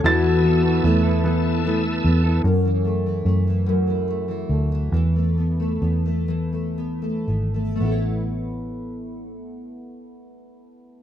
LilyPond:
<<
  \new Staff \with { instrumentName = "Grand piano" } { \time 6/8 \key a \major \tempo 4. = 46 a'''2 r4 | r2. | r2. | r2. | }
  \new Staff \with { instrumentName = "Tonewheel organ" } { \time 6/8 \key a \major <b' a'' e'''>2. | r2. | r2. | r2. | }
  \new Staff \with { instrumentName = "Clean electric guitar" } { \time 6/8 \key a \major <e b e' a'>8 <e b e' a'>16 <b e' a'>8 <b e' a'>16 <e b e' a'>8 <e b e' a'>16 <b e' a'>8 <b e' a'>16 | r2. | r2. | r2. | }
  \new Staff \with { instrumentName = "French horn section" } { \time 6/8 \key a \major fis'4 e'4 r8 b8 | r2. | r2. | r2. | }
  \new Staff \with { instrumentName = "Nylon-string guitar" } { \time 6/8 \key a \major e8 b8 a8 b8 a8 b8 | fis,16 e16 a16 e16 a16 e16 fis,16 e16 a16 e16 a16 e16 | e16 a16 b16 a16 b16 a16 e16 a16 b16 a16 b16 a16 | <a b e' a' cis''>2. | }
  \new Staff \with { instrumentName = "Fingered electric bass" } { \clef bass \time 6/8 \key a \major e,4 e,4. e,8 | fis,4 fis,4. d,8 | e,4 e,4. gis,,8 | a,,2. | }
>>